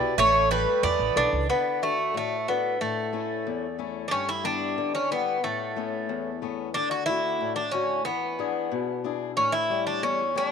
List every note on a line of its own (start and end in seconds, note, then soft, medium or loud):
0.00 0.17 B2 medium
0.00 0.14 B3 medium
0.00 0.12 E4 medium
0.00 0.13 G4 soft
0.00 0.13 B4 medium
0.00 0.19 D5 loud
0.18 0.64 A1 loud
0.18 0.48 A3 medium
0.18 0.82 A3 medium
0.18 0.51 C#5 loud
0.51 0.81 G3 medium
0.51 1.04 A4 medium
0.51 0.81 B4 medium
0.51 1.04 B4 soft
0.51 1.04 E5 medium
0.83 0.95 E2 medium
0.83 1.48 E3 medium
0.83 1.29 B3 medium
0.83 1.29 D5 medium
0.99 1.14 A1 medium
1.16 1.31 B1 medium
1.16 1.47 D4 loud
1.16 1.42 A4 soft
1.16 1.42 B4 soft
1.16 1.43 C#5 medium
1.33 1.47 C#2 medium
1.49 2.13 D3 medium
1.49 1.80 B3 medium
1.82 2.16 A3 medium
1.82 2.34 D4 soft
1.82 2.34 F#4 soft
1.82 2.35 A4 soft
2.14 2.78 A2 medium
2.14 2.46 A3 medium
2.48 2.81 B3 medium
2.48 2.74 D4 soft
2.48 2.74 F#4 soft
2.48 2.74 A4 medium
2.81 3.44 A2 medium
2.81 3.75 A3 medium
3.13 3.65 A3 soft
3.13 3.66 C#4 soft
3.13 3.66 E4 soft
3.47 4.10 E2 medium
3.79 4.05 A3 soft
3.79 4.05 C#4 soft
3.79 4.05 E4 soft
4.08 4.75 G2 medium
4.08 4.28 C#4 medium
4.08 4.12 D4 medium
4.29 4.44 E4 medium
4.44 4.96 G3 soft
4.44 4.97 B3 soft
4.44 4.94 D4 medium
4.44 4.97 E4 soft
4.78 5.41 D3 medium
4.95 5.11 C#4 medium
5.11 5.37 G3 soft
5.11 5.37 B3 soft
5.11 5.42 B3 medium
5.11 5.37 E4 soft
5.44 6.07 A2 medium
5.44 6.38 A3 medium
5.76 6.29 A3 soft
5.76 6.29 B3 soft
5.76 6.29 C#4 medium
6.09 6.73 E2 medium
6.42 6.68 A3 soft
6.42 6.68 B3 soft
6.42 6.68 C#4 soft
6.74 7.39 D3 medium
6.74 6.90 D4 medium
6.91 7.05 F#4 medium
7.06 7.60 A3 soft
7.06 7.60 D4 soft
7.06 7.52 E4 loud
7.06 7.61 F#4 soft
7.41 8.04 A2 medium
7.56 7.71 D4 medium
7.71 7.99 D3 soft
7.71 7.99 A3 soft
7.71 8.04 C#4 medium
7.71 8.00 F#4 medium
8.05 8.70 E3 medium
8.05 9.00 B3 medium
8.39 8.91 D4 soft
8.39 8.91 E4 soft
8.39 8.91 G#4 medium
8.72 9.35 B2 medium
9.04 9.30 D4 soft
9.04 9.31 E4 soft
9.04 9.31 G#4 soft
9.37 10.01 A2 medium
9.37 9.52 C#4 medium
9.52 9.86 E4 medium
9.70 10.22 G3 soft
9.70 10.23 A3 soft
9.70 10.23 C#4 medium
9.87 10.01 D4 medium
10.03 10.52 E2 medium
10.03 10.36 C#4 medium
10.35 10.52 G3 soft
10.35 10.52 A3 soft
10.35 10.52 D4 medium
10.35 10.52 C#5 medium